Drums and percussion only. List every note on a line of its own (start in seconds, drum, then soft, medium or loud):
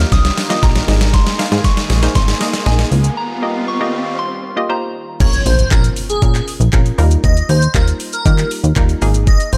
0.00 closed hi-hat medium
0.00 shaker medium
0.12 kick loud
0.12 snare loud
0.12 closed hi-hat medium
0.12 shaker medium
0.25 snare loud
0.25 closed hi-hat medium
0.25 shaker medium
0.38 snare loud
0.38 open hi-hat medium
0.38 shaker medium
0.50 snare loud
0.50 closed hi-hat medium
0.50 shaker medium
0.63 kick loud
0.63 snare loud
0.63 closed hi-hat medium
0.63 shaker medium
0.76 snare loud
0.76 closed hi-hat medium
0.76 shaker soft
0.88 snare loud
0.88 open hi-hat medium
0.88 shaker medium
1.01 snare loud
1.01 closed hi-hat medium
1.01 shaker medium
1.14 kick loud
1.14 snare loud
1.14 closed hi-hat medium
1.14 shaker medium
1.27 snare loud
1.27 closed hi-hat medium
1.27 shaker medium
1.39 snare loud
1.39 open hi-hat medium
1.39 shaker medium
1.52 snare loud
1.52 closed hi-hat soft
1.52 shaker medium
1.64 kick loud
1.64 snare loud
1.64 closed hi-hat medium
1.64 shaker medium
1.77 snare loud
1.77 closed hi-hat medium
1.77 shaker medium
1.90 snare loud
1.90 open hi-hat medium
1.90 shaker medium
2.03 snare loud
2.03 closed hi-hat medium
2.03 shaker medium
2.15 kick loud
2.15 snare loud
2.15 closed hi-hat medium
2.15 shaker medium
2.28 snare loud
2.28 closed hi-hat medium
2.28 shaker medium
2.41 snare loud
2.41 open hi-hat medium
2.41 shaker medium
2.53 snare loud
2.53 closed hi-hat medium
2.53 shaker medium
2.66 snare loud
2.66 closed hi-hat medium
2.66 shaker medium
2.79 snare loud
2.79 closed hi-hat medium
2.79 shaker medium
2.92 open hi-hat medium
2.92 shaker soft
3.04 closed hi-hat medium
3.04 shaker medium
5.20 kick loud
5.20 closed hi-hat medium
5.20 crash loud
5.20 shaker medium
5.33 closed hi-hat medium
5.33 shaker medium
5.46 open hi-hat medium
5.46 shaker medium
5.59 closed hi-hat medium
5.59 shaker medium
5.71 kick loud
5.71 clap loud
5.71 closed hi-hat medium
5.71 shaker medium
5.84 closed hi-hat medium
5.84 shaker medium
5.96 open hi-hat medium
5.96 shaker medium
6.10 closed hi-hat medium
6.10 shaker medium
6.22 kick loud
6.22 closed hi-hat medium
6.22 shaker medium
6.35 clap medium
6.35 closed hi-hat medium
6.35 shaker medium
6.48 open hi-hat medium
6.48 shaker medium
6.61 closed hi-hat medium
6.61 shaker medium
6.73 kick loud
6.73 clap loud
6.73 closed hi-hat medium
6.73 shaker medium
6.86 closed hi-hat medium
6.86 shaker medium
6.99 open hi-hat medium
6.99 shaker medium
7.11 closed hi-hat medium
7.11 shaker medium
7.24 kick loud
7.24 closed hi-hat medium
7.24 shaker medium
7.37 closed hi-hat medium
7.37 shaker medium
7.49 open hi-hat medium
7.49 shaker medium
7.62 closed hi-hat medium
7.62 shaker medium
7.75 kick loud
7.75 clap loud
7.75 closed hi-hat medium
7.75 shaker medium
7.88 closed hi-hat medium
7.88 shaker medium
8.00 open hi-hat medium
8.00 shaker medium
8.13 closed hi-hat medium
8.13 shaker medium
8.26 kick loud
8.26 closed hi-hat medium
8.26 shaker medium
8.38 clap medium
8.38 closed hi-hat medium
8.38 shaker medium
8.51 open hi-hat medium
8.51 shaker medium
8.64 closed hi-hat medium
8.64 shaker medium
8.76 kick loud
8.76 clap loud
8.76 closed hi-hat medium
8.76 shaker medium
8.89 closed hi-hat medium
8.89 shaker medium
9.02 open hi-hat medium
9.02 shaker medium
9.14 closed hi-hat medium
9.14 shaker medium
9.27 kick loud
9.27 closed hi-hat medium
9.27 shaker medium
9.40 closed hi-hat medium
9.40 shaker medium
9.53 open hi-hat medium
9.53 shaker medium